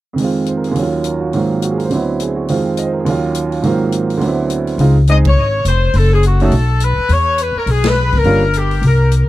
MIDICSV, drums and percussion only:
0, 0, Header, 1, 2, 480
1, 0, Start_track
1, 0, Key_signature, -5, "major"
1, 0, Tempo, 288323
1, 295, Time_signature, 4, 2, 24, 8
1, 15464, End_track
2, 0, Start_track
2, 0, Title_t, "Drums"
2, 297, Note_on_c, 9, 46, 36
2, 464, Note_off_c, 9, 46, 0
2, 772, Note_on_c, 9, 42, 38
2, 938, Note_off_c, 9, 42, 0
2, 1064, Note_on_c, 9, 46, 26
2, 1231, Note_off_c, 9, 46, 0
2, 1258, Note_on_c, 9, 46, 34
2, 1424, Note_off_c, 9, 46, 0
2, 1730, Note_on_c, 9, 42, 43
2, 1896, Note_off_c, 9, 42, 0
2, 2215, Note_on_c, 9, 46, 33
2, 2382, Note_off_c, 9, 46, 0
2, 2699, Note_on_c, 9, 42, 45
2, 2866, Note_off_c, 9, 42, 0
2, 2990, Note_on_c, 9, 46, 29
2, 3156, Note_off_c, 9, 46, 0
2, 3173, Note_on_c, 9, 46, 35
2, 3339, Note_off_c, 9, 46, 0
2, 3658, Note_on_c, 9, 42, 45
2, 3825, Note_off_c, 9, 42, 0
2, 4136, Note_on_c, 9, 46, 37
2, 4303, Note_off_c, 9, 46, 0
2, 4613, Note_on_c, 9, 42, 43
2, 4780, Note_off_c, 9, 42, 0
2, 5098, Note_on_c, 9, 46, 36
2, 5264, Note_off_c, 9, 46, 0
2, 5570, Note_on_c, 9, 42, 47
2, 5737, Note_off_c, 9, 42, 0
2, 5861, Note_on_c, 9, 46, 28
2, 6027, Note_off_c, 9, 46, 0
2, 6052, Note_on_c, 9, 46, 35
2, 6218, Note_off_c, 9, 46, 0
2, 6529, Note_on_c, 9, 42, 42
2, 6695, Note_off_c, 9, 42, 0
2, 6826, Note_on_c, 9, 46, 31
2, 6993, Note_off_c, 9, 46, 0
2, 7013, Note_on_c, 9, 46, 33
2, 7179, Note_off_c, 9, 46, 0
2, 7488, Note_on_c, 9, 42, 47
2, 7655, Note_off_c, 9, 42, 0
2, 7777, Note_on_c, 9, 46, 26
2, 7944, Note_off_c, 9, 46, 0
2, 7973, Note_on_c, 9, 46, 38
2, 8140, Note_off_c, 9, 46, 0
2, 8448, Note_on_c, 9, 42, 48
2, 8614, Note_off_c, 9, 42, 0
2, 8740, Note_on_c, 9, 51, 63
2, 8742, Note_on_c, 9, 36, 65
2, 8906, Note_off_c, 9, 51, 0
2, 8909, Note_off_c, 9, 36, 0
2, 9407, Note_on_c, 9, 42, 52
2, 9574, Note_off_c, 9, 42, 0
2, 9881, Note_on_c, 9, 46, 37
2, 10048, Note_off_c, 9, 46, 0
2, 10369, Note_on_c, 9, 42, 41
2, 10536, Note_off_c, 9, 42, 0
2, 10653, Note_on_c, 9, 46, 31
2, 10819, Note_off_c, 9, 46, 0
2, 10847, Note_on_c, 9, 46, 40
2, 11013, Note_off_c, 9, 46, 0
2, 11324, Note_on_c, 9, 42, 49
2, 11490, Note_off_c, 9, 42, 0
2, 11806, Note_on_c, 9, 46, 40
2, 11972, Note_off_c, 9, 46, 0
2, 12285, Note_on_c, 9, 42, 46
2, 12451, Note_off_c, 9, 42, 0
2, 12768, Note_on_c, 9, 46, 42
2, 12934, Note_off_c, 9, 46, 0
2, 13048, Note_on_c, 9, 51, 53
2, 13053, Note_on_c, 9, 38, 63
2, 13215, Note_off_c, 9, 51, 0
2, 13220, Note_off_c, 9, 38, 0
2, 13528, Note_on_c, 9, 46, 30
2, 13536, Note_on_c, 9, 36, 45
2, 13694, Note_off_c, 9, 46, 0
2, 13703, Note_off_c, 9, 36, 0
2, 13723, Note_on_c, 9, 46, 36
2, 13889, Note_off_c, 9, 46, 0
2, 14209, Note_on_c, 9, 42, 44
2, 14375, Note_off_c, 9, 42, 0
2, 14500, Note_on_c, 9, 46, 30
2, 14667, Note_off_c, 9, 46, 0
2, 14694, Note_on_c, 9, 46, 39
2, 14860, Note_off_c, 9, 46, 0
2, 15175, Note_on_c, 9, 42, 48
2, 15342, Note_off_c, 9, 42, 0
2, 15464, End_track
0, 0, End_of_file